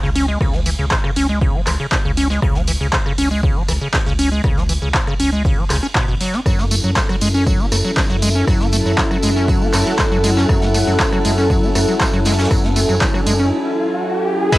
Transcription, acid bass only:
0.03 C#3
0.16 C#4
0.28 G#3
0.41 C#3
0.54 F#3
0.66 E3
0.79 C#3
0.91 C#3
1.04 C#3
1.16 C#4
1.29 G#3
1.42 C#3
1.54 F#3
1.67 E3
1.80 C#3
1.92 C#3
2.05 C#3
2.17 C#4
2.30 G#3
2.42 C#3
2.55 F#3
2.68 E3
2.81 C#3
2.93 C#3
3.06 C#3
3.18 C#4
3.31 G#3
3.43 C#3
3.56 F#3
3.68 E3
3.81 C#3
3.94 C#3
4.06 C#3
4.19 C#4
4.32 G#3
4.44 C#3
4.57 F#3
4.69 E3
4.82 C#3
4.95 C#3
5.07 C#3
5.20 C#4
5.33 G#3
5.45 C#3
5.58 F#3
5.70 C#3
5.83 C#4
5.95 B2
6.08 B2
6.21 F#3
6.33 C#4
6.46 F#3
6.59 B3
6.71 A3
6.84 F#3
6.96 F#3
7.09 F#3
7.22 G#3
7.34 C#4
7.47 F#3
7.60 B3
7.72 A3
7.85 F#3
7.97 F#3
8.10 F#3
8.22 G#3
8.35 C#4
8.48 F#3
8.60 B3
8.73 A3
8.86 F#3
8.98 F#3
9.11 F#3
9.23 G#3
9.36 C#4
9.48 F#3
9.61 B3
9.74 A3
9.86 F#3
9.99 F#3
10.12 F#3
10.24 G#3
10.37 C#4
10.49 F#3
10.62 B3
10.74 A3
10.87 F#3
11.00 F#3
11.12 F#3
11.25 G#3
11.38 C#4
11.50 F#3
11.63 B3
11.75 A3
11.88 F#3
12.00 F#3
12.13 F#3
12.26 G#3
12.38 C#4
12.51 F#3
12.64 B3
12.76 A3
12.89 F#3
13.01 F#3
13.14 F#3
13.26 G#3
13.39 C#4
14.53 C#3

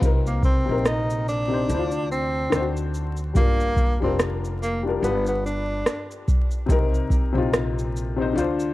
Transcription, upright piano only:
Already playing: F4 B4
0.00 C3 C4 D#4
0.05 A#4
0.66 C3 C4 D#4
0.71 A#4
1.48 C3 C4 D#4
1.54 C5
1.68 D3 D4 E4
1.74 C5
1.79 F4
2.50 D3 D4
2.54 D#4 C5
2.61 F#4
3.34 G3 D4 F4
3.39 A#4
4.00 G3 D4 F4
4.06 A#4
4.83 G3 D4 F4
4.89 A#4
5.00 G3 D4 F4
5.05 B4
6.66 C3 C4
6.70 D#4 A#4
7.33 C3 C4 D#4
7.38 F4
8.16 C3 C4 D#4
8.22 C5
8.33 D3 D4 F4
8.39 C5

